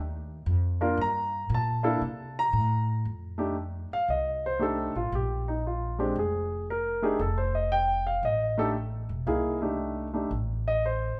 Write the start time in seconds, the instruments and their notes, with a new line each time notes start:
Already playing: upright bass D#2
0.46 upright bass F2
0.81 grand piano A#3 D4 F4 A#4
0.97 upright bass G2
1.01 grand piano A#5
1.49 upright bass A#2
1.54 grand piano A5
1.83 grand piano A#3 D4 E4 A4
2.01 upright bass C3
2.39 grand piano A#5
2.53 upright bass A2
3.05 upright bass F2
3.38 grand piano A3 D4 D#4 G4
3.92 grand piano F5, muted upright bass stroke
4.08 upright bass C2, grand piano D#5
4.46 grand piano C5
4.59 grand piano A3 D4 D#4 G4 A4
4.95 upright bass A1, grand piano F4
5.12 upright bass A#1, grand piano G4
5.48 grand piano D#4
5.67 grand piano F4
5.99 grand piano G#3 C4 D4 G4
6.16 upright bass F1, grand piano G#4
6.70 grand piano A#4
7.02 grand piano A3 D4 D#4 G4 G#4
7.19 upright bass F1, grand piano A4
7.38 grand piano C5
7.55 grand piano D#5
7.72 grand piano G5
8.07 grand piano F5
8.23 upright bass A1, grand piano D#5
8.58 grand piano A3 D4 D#4 G4 A4
9.09 upright bass E1
9.27 upright bass C2, grand piano A#3 D#4 E4 G#4
9.62 grand piano A3 D4 D#4 G4
10.13 grand piano A3 D4 D#4 G4
10.31 upright bass A1
10.68 grand piano D#5
10.86 grand piano C5